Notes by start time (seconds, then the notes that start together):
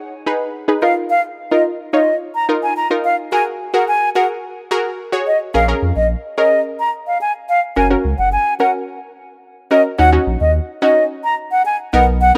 Already playing: D#4 G#4 C#5
0.26 D#4 G#4 B4
0.68 D#4 G#4 B4
0.82 D#4 F4 A#4 F5
1.10 F5
1.51 D#4 F4 A#4 D#5
1.93 D#4 F4 C#5 D#5
2.35 A#5
2.49 D#4 F4 A#4
2.63 G#5
2.77 A#5
2.90 D#4 F4 A#4
3.05 F5
3.32 F#4 G#4 A#4 G#5
3.74 F#4 G#4 A#4 F#5
3.88 G#5
4.15 F#4 G#4 A#4 F#5
4.71 F#4 G#4 A#4
5.12 F#4 G#4 C#5
5.27 D#5
5.54 A#1 C#4 G#4 A#4 F5
5.68 C#4 G#4 A#4
5.82 F2
5.96 A#1 D#5
6.38 C#4 G#4 A#4 D#5
6.80 A#5
7.07 F5
7.21 G#5
7.49 F5
7.76 F#1 C#4 F#4 A#4 G#5
7.90 C#4 F#4 A#4
8.04 C#2
8.18 F#1 F#5
8.32 G#5
8.60 C#4 F#4 A#4 F#5
9.71 C#4 F#4 A#4 D#5
9.99 D#2 C#4 D#4 F#4 F#5
10.12 C#4 D#4 F#4
10.27 A#1
10.41 D#2 D#5
10.82 C#4 D#4 F#4 D#5
11.24 A#5
11.52 F#5
11.66 G#5
11.93 B1 B3 D#4 A#4 F#5
12.21 F#5
12.35 B3